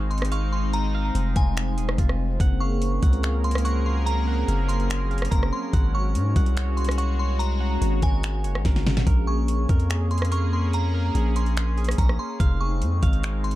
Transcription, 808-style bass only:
Already playing: G#1
1.15 F1
1.36 F1
1.77 D#1
1.88 F1
1.98 F1
2.40 F#1
3.03 C#2
4.48 F#1
5.32 F#1
5.73 G#1
6.15 G#2
6.36 C2
7.82 G#1
8.03 G#1
8.44 F#1
8.55 G#1
8.65 G#1
9.07 A#1
9.69 F2
11.15 A#1
11.98 A#1
12.40 F1
12.82 F2
13.03 G#1

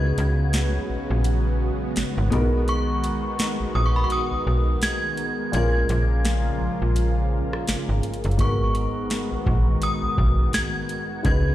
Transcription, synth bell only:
Already playing: G#6
2.69 C#6
3.75 D#6
3.86 C#6
3.96 B5
4.04 C#6
4.12 D#6
4.83 G#6
5.55 G#6
8.41 C#6
9.83 D#6
10.54 G#6
11.26 G#6

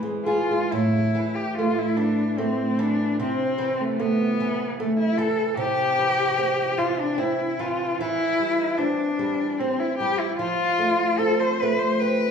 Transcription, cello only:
0.25 F4
0.71 E4
1.35 G4
1.57 F4
1.78 E4
1.96 D4
2.38 C4
2.79 D4
3.21 C4
3.81 A3
4.01 B3
4.79 A3
4.99 E4
5.17 A4
5.57 G4
6.78 F4
6.99 D4
7.18 E4
7.60 F4
7.98 E4
8.78 D4
9.59 C4
9.80 E4
9.98 G4
10.19 E4
10.37 F4
11.19 A4
11.40 C5
11.60 B4
11.79 C5
11.99 B4

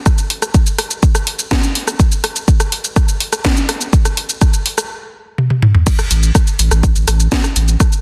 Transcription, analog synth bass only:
0.30 A1
0.79 A1
0.91 A1
1.15 A1
1.27 A1
1.75 A1
2.24 A1
2.72 A1
2.84 A1
3.08 A1
3.21 A1
3.69 A1
4.17 A1
4.66 A1
4.78 A1
6.11 A1
6.59 A1
6.71 A1
6.95 A1
7.08 A1
7.56 A1

